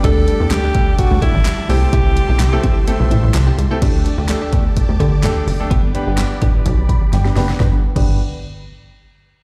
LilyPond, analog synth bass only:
\new Staff \with { instrumentName = "Analog synth bass" } { \clef bass \time 4/4 \key g \major \tempo 4 = 127 d,8. e,16 d,8 r8. d,16 r16 a,,16 r8 c,8 | c,8. b,,16 c,8 r8. b,,16 a,,16 a,,16 c,8 cis,16 r16 | d,8. d,8 r16 e,8 r16 d,16 d8 d,8 fis,,8 | g,,8. g,,8 r16 a,,8 b,,8 r8 g,,8 fis,,8 |
g,,16 r8 g,,8 r2 r8. | }